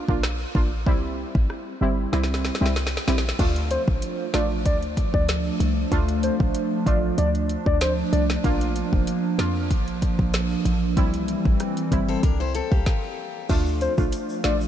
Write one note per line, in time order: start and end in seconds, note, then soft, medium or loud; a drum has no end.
0.08 0.45 A#1 medium
0.08 0.22 A#3 medium
0.08 0.22 D4 medium
0.08 0.22 F4 medium
0.08 kick medium
0.23 cross-stick medium
0.23 snare loud
0.55 0.88 A1 medium
0.55 0.70 A#3 medium
0.55 0.70 D4 medium
0.55 0.70 F4 medium
0.55 kick medium
0.86 1.25 C2 loud
0.86 1.74 G3 medium
0.86 1.74 C4 medium
0.86 1.74 E4 loud
0.86 kick loud
1.35 1.47 A1 medium
1.35 kick medium
1.50 cross-stick medium
1.81 2.06 G1 medium
1.81 2.10 G3 medium
1.81 2.10 C4 medium
1.81 2.11 E4 medium
2.12 2.51 C2 loud
2.12 2.57 G3 medium
2.12 2.57 C4 medium
2.12 2.57 E4 loud
2.12 snare medium
2.24 snare medium
2.34 snare medium
2.45 snare medium
2.55 snare medium
2.61 2.98 C2 medium
2.61 2.74 G3 medium
2.61 2.74 C4 medium
2.61 2.74 E4 medium
2.66 snare medium
2.76 snare medium
2.87 snare medium
2.97 snare medium
3.07 3.33 A#1 medium
3.07 3.22 G3 medium
3.07 3.23 C4 medium
3.07 3.23 E4 medium
3.07 snare medium
3.18 snare medium
3.29 snare medium
3.39 3.78 D2 loud
3.39 8.40 F3 medium
3.39 4.27 A3 loud
3.39 8.40 A3 medium
3.39 10.93 D4 medium
3.39 4.27 D4 medium
3.39 4.27 F4 loud
3.39 kick loud
3.39 closed hi-hat medium
3.39 crash loud
3.56 closed hi-hat medium
3.71 3.82 C5 medium
3.71 closed hi-hat medium
3.88 3.99 A#1 medium
3.88 kick medium
4.02 closed hi-hat medium
4.34 4.67 A1 medium
4.34 4.63 A3 medium
4.34 4.63 D4 medium
4.34 4.63 F4 medium
4.34 4.45 D5 medium
4.34 snare loud
4.34 closed hi-hat medium
4.66 5.04 D2 loud
4.66 4.77 D5 medium
4.66 kick loud
4.66 closed hi-hat medium
4.82 closed hi-hat soft
4.97 kick medium
4.97 closed hi-hat medium
5.14 5.51 D2 medium
5.14 5.24 D5 medium
5.14 kick medium
5.29 snare loud
5.29 closed hi-hat medium
5.60 5.85 C2 medium
5.60 closed hi-hat medium
5.91 6.30 D2 loud
5.91 6.79 A3 medium
5.91 6.79 D4 medium
5.91 6.79 F4 loud
5.91 kick loud
5.91 closed hi-hat medium
6.08 closed hi-hat medium
6.23 6.35 C5 medium
6.23 closed hi-hat medium
6.40 6.52 A#1 medium
6.40 kick medium
6.55 closed hi-hat medium
6.86 7.12 A1 loud
6.86 7.15 A3 medium
6.86 7.16 D4 medium
6.86 7.16 F4 medium
6.86 6.98 D5 medium
6.86 kick medium
6.86 closed hi-hat medium
7.18 7.56 D2 loud
7.18 7.30 D5 medium
7.18 closed hi-hat medium
7.35 closed hi-hat soft
7.49 closed hi-hat medium
7.66 8.03 D2 medium
7.66 7.77 D5 medium
7.66 kick medium
7.81 7.93 C5 medium
7.81 snare loud
7.81 closed hi-hat medium
8.13 8.38 C2 loud
8.13 8.24 D5 medium
8.13 closed hi-hat medium
8.30 snare medium
8.44 8.83 A#1 loud
8.44 10.94 F3 medium
8.44 9.32 A#3 medium
8.44 10.94 A#3 medium
8.44 9.32 D4 medium
8.44 9.32 F4 loud
8.44 kick loud
8.44 closed hi-hat medium
8.61 closed hi-hat medium
8.76 closed hi-hat medium
8.93 9.05 F1 medium
8.93 kick medium
9.07 closed hi-hat medium
9.38 9.72 F2 loud
9.38 9.68 A#3 medium
9.38 9.68 D4 medium
9.38 9.68 F4 medium
9.38 snare loud
9.38 closed hi-hat medium
9.71 10.09 A#1 loud
9.71 kick loud
9.71 closed hi-hat medium
9.88 closed hi-hat soft
10.02 kick medium
10.02 closed hi-hat medium
10.19 10.56 A#1 medium
10.19 kick medium
10.34 snare loud
10.34 closed hi-hat medium
10.65 10.98 A1 medium
10.65 closed hi-hat medium
10.97 11.35 C2 loud
10.97 12.85 E3 medium
10.97 11.84 G3 loud
10.97 12.85 G3 medium
10.97 11.85 C4 medium
10.97 12.85 C4 medium
10.97 11.85 E4 loud
10.97 kick loud
10.97 closed hi-hat medium
11.14 closed hi-hat medium
11.28 closed hi-hat medium
11.45 11.57 A1 medium
11.45 kick medium
11.60 cross-stick medium
11.60 closed hi-hat medium
11.77 closed hi-hat medium
11.91 12.17 G1 medium
11.91 12.21 G3 medium
11.91 12.21 C4 medium
11.91 12.21 E4 medium
11.91 kick medium
11.91 closed hi-hat medium
12.08 12.23 C4 medium
12.08 12.23 A4 medium
12.23 12.62 C2 loud
12.23 12.39 D4 medium
12.23 12.39 A#4 medium
12.23 kick loud
12.23 closed hi-hat medium
12.40 12.54 E4 medium
12.40 12.54 C5 medium
12.55 12.71 C4 medium
12.55 12.71 A4 medium
12.55 closed hi-hat medium
12.72 12.83 C2 medium
12.72 13.46 A#3 medium
12.72 13.46 G4 medium
12.72 kick medium
12.86 kick loud
12.86 snare loud
13.49 13.88 D2 loud
13.49 14.68 F3 medium
13.49 13.94 A3 medium
13.49 14.68 A3 medium
13.49 13.94 D4 medium
13.49 14.68 D4 loud
13.49 13.94 F4 loud
13.49 kick loud
13.49 closed hi-hat medium
13.49 crash loud
13.49 shaker medium
13.66 shaker medium
13.81 13.93 C5 medium
13.81 closed hi-hat medium
13.81 shaker medium
13.98 14.10 A#1 loud
13.98 14.41 A3 medium
13.98 14.41 D4 medium
13.98 14.41 F4 medium
13.98 kick loud
13.98 shaker medium
14.12 closed hi-hat medium
14.12 shaker medium
14.29 shaker medium
14.44 14.68 A1 medium
14.44 14.68 A3 medium
14.44 14.68 D4 medium
14.44 14.68 F4 medium
14.44 14.56 D5 medium
14.44 snare loud
14.44 closed hi-hat medium
14.61 shaker medium